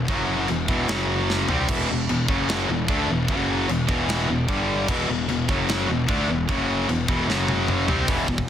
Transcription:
0.08 F#1 F#2 C#3 F#3, kick, china
0.48 E1 E2 B2, china
0.68 E1 E2 B2 E3, kick
0.88 F#1 F#2 C#3 F#3, snare, china
1.30 snare
1.49 C2 C3 G3 C4, floor tom
1.69 E1 E2 B2 E3, kick, crash, china
1.89 E1 E2 B2
2.09 E1 E2 B2, china
2.28 F#1 F#2 C#3 F#3, kick
2.49 snare, china
2.69 E1 E2 B2
2.88 D2 D3 A3 D4, kick, china
3.08 E1 E2 B2
3.28 F#1 F#2 C#3 F#3, kick, china
3.68 E1 E2 B2, china
3.88 E1 E2 B2 E3, kick
4.09 snare, china
4.28 E1 E2 B2
4.49 G1 G2 D3 G3, kick, china
4.88 E1 E2 B2 E3, kick, china, crash
5.09 E1 E2 B2
5.28 E1 E2 B2, china
5.49 F#1 F#2 C#3 F#3, kick
5.68 snare, china
5.89 E1 E2 B2
6.08 D2 D3 A3 D4, kick, china
6.29 E1 E2 B2
6.49 F#1 F#2 C#3 F#3, kick, china
6.89 E1 E2 B2, china
7.08 E1 E2 B2 E3, kick
7.28 F#1 F#2 C#3 F#3, snare
7.48 high tom
7.68 mid tom
7.87 C2 C3 G3 C4, floor tom
8.08 E1 E2 B2 E3, kick, open hi-hat
8.28 E1 E2 B2, kick
8.38 kick

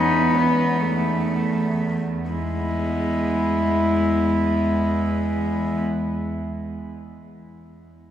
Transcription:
Already playing: E2 B3 D#4
0.35 B3
0.81 A3
2.28 E2 G#3 B3 E4

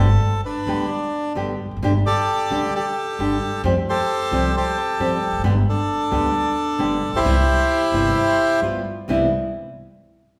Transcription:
Already playing: G1 A4
0.45 D4 B4
0.66 D2 D3 G3 B3 G4
1.35 G1 D3 G3 B3 G4
1.66 E1
1.71 F1
1.77 F#1
1.83 G1 D3 G3 D4 G4
2.06 G4 A4 D5
2.50 D2 D3 G3 D4 G4
2.75 G4 A4 D5
3.19 G1 D3 G3 D4 G4
3.64 F2 F3 G3 C4 G4
3.89 G4 A4 C5
4.31 C2 F3 G3 C4 G4
4.57 G4 A4 C5
4.99 F2 F3 G3 C4 G4
5.27 E1
5.32 F1
5.39 F#1
5.44 G1 D3 G3 B3 G4
5.69 D4 A4
6.11 D2 D3 G3 B3 G4
6.79 G1 D3 G3 B3 G4
7.07 A1
7.13 A#1 G4 C5
7.17 B1 E4
7.25 C2 C3 E3 G3 B3 E4
7.92 G1 C3 E3 G3 B3 E4
8.61 G1 G3 B3 F4
9.08 C2 C3 E3 G3 B3 E4

